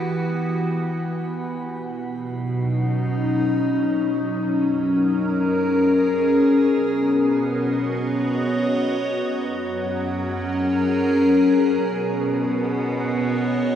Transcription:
Already playing: ambient pad E3 B3 F#4 G4
1.81 cello section B2, ambient pad B2
2.16 ambient pad F#3
2.30 ambient pad D#4
2.58 ambient pad C#4
4.31 cello section F#2
4.75 ambient pad A#4
5.22 ambient pad G#4
6.81 cello section B2, ambient pad B3
7.13 ambient pad F#4
7.84 ambient pad C#5
7.93 ambient pad D#5
9.29 cello section F#2, ambient pad F#3
9.76 ambient pad C#4
10.12 ambient pad G#4
10.44 ambient pad A#4
11.81 cello section B2, ambient pad B3
12.22 ambient pad F#4
12.55 ambient pad C#5
12.92 ambient pad D#5

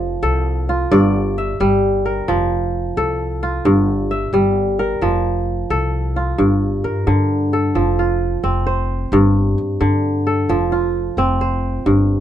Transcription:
Already playing: upright bass F1, kora F3
0.23 upright bass C2, kora A4
0.69 kora F4
0.91 upright bass G1, kora G2 D5
1.38 kora E5
1.60 upright bass G1, kora G3
2.06 kora A#4
2.28 upright bass F1, kora F3
2.97 upright bass C2, kora A4
3.43 kora F4
3.65 upright bass G1, kora G2
4.11 kora E5
4.33 upright bass G1, kora G3
4.79 kora A#4
5.01 upright bass F1, kora F3
5.70 upright bass C2, kora A4
6.16 kora F4
6.38 upright bass G1, kora G2
6.84 upright bass G2, kora A#4
7.07 upright bass G2, kora D3
7.53 kora A4
7.75 upright bass F1, kora F3
7.99 kora F4
8.43 upright bass F1, kora C4
8.67 kora C5
9.12 upright bass G1, kora G2
9.58 upright bass G2
9.81 upright bass G2, kora D3
10.27 kora A4
10.49 upright bass F1, kora F3
10.72 kora F4
11.17 upright bass F1, kora C4
11.41 kora C5
11.86 upright bass G1, kora G2

